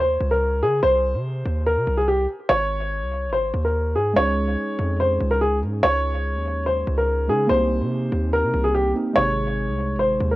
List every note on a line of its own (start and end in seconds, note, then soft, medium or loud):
0.00 0.18 D#2 loud
0.00 0.29 C5 medium
0.20 0.64 C#2 loud
0.31 0.60 A#4 medium
0.62 0.82 C#3 loud
0.62 0.78 G#4 medium
0.83 1.16 C2 loud
0.83 1.62 C5 loud
1.14 1.44 C3 loud
1.45 1.78 D#2 loud
1.66 1.96 A#4 medium
1.77 1.87 C3 loud
1.87 2.27 C2 loud
1.97 2.05 G#4 medium
2.08 2.24 G4 medium
2.49 3.03 G#1 loud
2.49 3.29 C#5 loud
3.02 3.29 C2 loud
3.28 3.52 G#1 loud
3.33 3.62 C5 medium
3.54 3.97 D#2 loud
3.65 3.94 A#4 medium
3.95 4.15 G#2 loud
3.95 4.11 G#4 medium
4.13 4.56 C#2 loud
4.13 7.23 G#3 medium
4.13 7.24 C#4 medium
4.13 7.25 D#4 medium
4.13 4.96 C#5 loud
4.19 7.26 G#4 medium
4.79 5.19 F2 loud
5.00 5.29 C5 medium
5.20 5.64 C#2 loud
5.31 5.39 A#4 medium
5.41 5.57 G#4 medium
5.62 5.82 G#2 loud
5.83 6.36 C#2 loud
5.83 6.62 C#5 loud
6.35 6.84 D#2 loud
6.66 6.96 C5 medium
6.87 7.30 C#2 loud
6.98 7.27 A#4 medium
7.27 7.49 C#3 loud
7.27 7.49 G#3 soft
7.27 7.49 C#4 medium
7.27 7.50 D#4 soft
7.27 7.45 G#4 medium
7.27 7.50 G#4 medium
7.47 7.82 C2 loud
7.47 8.91 A#3 medium
7.47 8.92 C4 medium
7.47 8.93 D#4 medium
7.47 8.29 C5 loud
7.53 8.94 G4 medium
7.81 8.11 C3 loud
8.12 8.45 D#2 loud
8.33 8.62 A#4 medium
8.43 8.53 C3 loud
8.54 8.94 C2 loud
8.64 8.72 G#4 medium
8.75 8.90 G4 medium
8.94 9.16 A#3 medium
8.94 9.16 C4 medium
8.94 9.16 D#4 medium
8.94 9.17 G4 medium
9.13 9.70 G#1 loud
9.13 10.36 C3 medium
9.13 10.36 G#3 medium
9.13 10.36 D#4 medium
9.13 9.95 C#5 loud
9.19 10.36 G#4 medium
9.68 9.96 C2 loud
9.94 10.19 G#1 loud
9.99 10.29 C5 medium
10.20 10.36 D#2 loud
10.31 10.36 A#4 medium